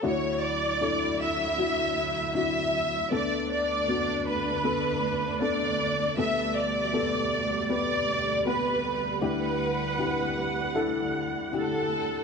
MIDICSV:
0, 0, Header, 1, 4, 480
1, 0, Start_track
1, 0, Key_signature, 2, "major"
1, 0, Tempo, 766284
1, 21, Time_signature, 4, 2, 24, 8
1, 7666, End_track
2, 0, Start_track
2, 0, Title_t, "Violin section"
2, 0, Program_c, 0, 48
2, 30, Note_on_c, 0, 73, 82
2, 267, Note_off_c, 0, 73, 0
2, 272, Note_on_c, 0, 74, 81
2, 751, Note_off_c, 0, 74, 0
2, 755, Note_on_c, 0, 76, 82
2, 1452, Note_off_c, 0, 76, 0
2, 1477, Note_on_c, 0, 76, 75
2, 1930, Note_off_c, 0, 76, 0
2, 1959, Note_on_c, 0, 74, 75
2, 2190, Note_off_c, 0, 74, 0
2, 2197, Note_on_c, 0, 74, 76
2, 2647, Note_off_c, 0, 74, 0
2, 2673, Note_on_c, 0, 71, 79
2, 3367, Note_off_c, 0, 71, 0
2, 3389, Note_on_c, 0, 74, 76
2, 3843, Note_off_c, 0, 74, 0
2, 3869, Note_on_c, 0, 76, 83
2, 4089, Note_off_c, 0, 76, 0
2, 4109, Note_on_c, 0, 74, 78
2, 4813, Note_off_c, 0, 74, 0
2, 4821, Note_on_c, 0, 74, 81
2, 5272, Note_off_c, 0, 74, 0
2, 5300, Note_on_c, 0, 71, 68
2, 5770, Note_off_c, 0, 71, 0
2, 5777, Note_on_c, 0, 71, 71
2, 6711, Note_off_c, 0, 71, 0
2, 7233, Note_on_c, 0, 69, 69
2, 7666, Note_off_c, 0, 69, 0
2, 7666, End_track
3, 0, Start_track
3, 0, Title_t, "Grand piano"
3, 0, Program_c, 1, 0
3, 17, Note_on_c, 1, 62, 73
3, 23, Note_on_c, 1, 64, 68
3, 24, Note_on_c, 1, 38, 52
3, 25, Note_on_c, 1, 50, 49
3, 28, Note_on_c, 1, 66, 87
3, 159, Control_c, 1, 64, 127
3, 478, Note_off_c, 1, 62, 0
3, 481, Note_off_c, 1, 64, 0
3, 484, Note_off_c, 1, 66, 0
3, 504, Note_on_c, 1, 62, 56
3, 509, Note_on_c, 1, 64, 49
3, 512, Note_on_c, 1, 69, 60
3, 964, Note_off_c, 1, 62, 0
3, 967, Note_off_c, 1, 64, 0
3, 969, Note_off_c, 1, 69, 0
3, 984, Note_on_c, 1, 62, 57
3, 989, Note_on_c, 1, 64, 52
3, 992, Note_on_c, 1, 66, 65
3, 1446, Note_off_c, 1, 62, 0
3, 1448, Note_off_c, 1, 64, 0
3, 1450, Note_off_c, 1, 66, 0
3, 1468, Note_on_c, 1, 62, 61
3, 1472, Note_on_c, 1, 64, 52
3, 1477, Note_on_c, 1, 66, 65
3, 1927, Note_off_c, 1, 62, 0
3, 1929, Note_off_c, 1, 38, 0
3, 1929, Note_off_c, 1, 64, 0
3, 1930, Note_off_c, 1, 50, 0
3, 1932, Note_off_c, 1, 66, 0
3, 1947, Note_on_c, 1, 59, 72
3, 1953, Note_on_c, 1, 38, 44
3, 1954, Note_on_c, 1, 50, 55
3, 1954, Note_on_c, 1, 62, 66
3, 1957, Note_on_c, 1, 69, 76
3, 1960, Control_c, 1, 64, 0
3, 2054, Control_c, 1, 64, 127
3, 2405, Note_off_c, 1, 59, 0
3, 2408, Note_off_c, 1, 62, 0
3, 2410, Note_off_c, 1, 69, 0
3, 2429, Note_on_c, 1, 59, 54
3, 2434, Note_on_c, 1, 62, 48
3, 2436, Note_on_c, 1, 66, 62
3, 2885, Note_off_c, 1, 59, 0
3, 2887, Note_off_c, 1, 62, 0
3, 2888, Note_off_c, 1, 66, 0
3, 2904, Note_on_c, 1, 59, 55
3, 2909, Note_on_c, 1, 62, 53
3, 2912, Note_on_c, 1, 69, 64
3, 3363, Note_off_c, 1, 59, 0
3, 3366, Note_off_c, 1, 62, 0
3, 3368, Note_off_c, 1, 69, 0
3, 3384, Note_on_c, 1, 59, 53
3, 3388, Note_on_c, 1, 62, 56
3, 3394, Note_on_c, 1, 69, 65
3, 3841, Note_off_c, 1, 59, 0
3, 3843, Note_off_c, 1, 38, 0
3, 3843, Note_off_c, 1, 62, 0
3, 3844, Note_off_c, 1, 50, 0
3, 3846, Note_off_c, 1, 69, 0
3, 3868, Note_on_c, 1, 59, 76
3, 3871, Note_on_c, 1, 50, 47
3, 3872, Note_on_c, 1, 67, 63
3, 3873, Note_on_c, 1, 38, 52
3, 3875, Control_c, 1, 64, 0
3, 3878, Note_on_c, 1, 69, 77
3, 3970, Control_c, 1, 64, 127
3, 4320, Note_off_c, 1, 59, 0
3, 4322, Note_off_c, 1, 67, 0
3, 4325, Note_off_c, 1, 69, 0
3, 4338, Note_on_c, 1, 59, 60
3, 4341, Note_on_c, 1, 67, 52
3, 4346, Note_on_c, 1, 69, 67
3, 4793, Note_off_c, 1, 59, 0
3, 4794, Note_off_c, 1, 67, 0
3, 4797, Note_off_c, 1, 69, 0
3, 4818, Note_on_c, 1, 59, 59
3, 4822, Note_on_c, 1, 67, 52
3, 4825, Note_on_c, 1, 71, 65
3, 5272, Note_off_c, 1, 59, 0
3, 5274, Note_off_c, 1, 67, 0
3, 5275, Note_off_c, 1, 71, 0
3, 5297, Note_on_c, 1, 59, 60
3, 5302, Note_on_c, 1, 67, 56
3, 5307, Note_on_c, 1, 71, 63
3, 5750, Note_off_c, 1, 50, 0
3, 5750, Note_off_c, 1, 59, 0
3, 5751, Note_off_c, 1, 38, 0
3, 5752, Note_off_c, 1, 67, 0
3, 5755, Note_off_c, 1, 71, 0
3, 5773, Note_on_c, 1, 62, 76
3, 5775, Note_on_c, 1, 64, 67
3, 5777, Note_on_c, 1, 38, 54
3, 5778, Note_on_c, 1, 50, 51
3, 5781, Note_on_c, 1, 67, 82
3, 5782, Control_c, 1, 64, 0
3, 5885, Control_c, 1, 64, 127
3, 6228, Note_off_c, 1, 62, 0
3, 6229, Note_off_c, 1, 64, 0
3, 6232, Note_off_c, 1, 67, 0
3, 6250, Note_on_c, 1, 62, 59
3, 6256, Note_on_c, 1, 64, 50
3, 6260, Note_on_c, 1, 67, 67
3, 6709, Note_off_c, 1, 62, 0
3, 6712, Note_off_c, 1, 64, 0
3, 6714, Note_off_c, 1, 67, 0
3, 6730, Note_on_c, 1, 62, 64
3, 6734, Note_on_c, 1, 64, 68
3, 6738, Note_on_c, 1, 69, 74
3, 7193, Note_off_c, 1, 62, 0
3, 7196, Note_off_c, 1, 64, 0
3, 7198, Note_off_c, 1, 69, 0
3, 7217, Note_on_c, 1, 62, 54
3, 7222, Note_on_c, 1, 64, 53
3, 7226, Note_on_c, 1, 67, 63
3, 7666, Note_off_c, 1, 38, 0
3, 7666, Note_off_c, 1, 50, 0
3, 7666, Note_off_c, 1, 62, 0
3, 7666, Note_off_c, 1, 64, 0
3, 7666, Note_off_c, 1, 67, 0
3, 7666, End_track
4, 0, Start_track
4, 0, Title_t, "String section"
4, 0, Program_c, 2, 48
4, 21, Note_on_c, 2, 38, 53
4, 23, Note_on_c, 2, 50, 51
4, 23, Note_on_c, 2, 64, 63
4, 24, Note_on_c, 2, 54, 53
4, 1935, Note_off_c, 2, 50, 0
4, 1935, Note_off_c, 2, 54, 0
4, 1935, Note_off_c, 2, 64, 0
4, 1952, Note_on_c, 2, 50, 49
4, 1953, Note_on_c, 2, 62, 68
4, 1954, Note_on_c, 2, 57, 56
4, 3848, Note_off_c, 2, 50, 0
4, 3849, Note_off_c, 2, 62, 0
4, 3863, Note_on_c, 2, 55, 63
4, 3864, Note_on_c, 2, 47, 58
4, 5748, Note_off_c, 2, 57, 0
4, 5752, Note_off_c, 2, 47, 0
4, 5772, Note_on_c, 2, 50, 52
4, 5774, Note_on_c, 2, 78, 70
4, 7666, Note_off_c, 2, 38, 0
4, 7666, Note_off_c, 2, 50, 0
4, 7666, Note_off_c, 2, 55, 0
4, 7666, Note_off_c, 2, 78, 0
4, 7666, End_track
0, 0, End_of_file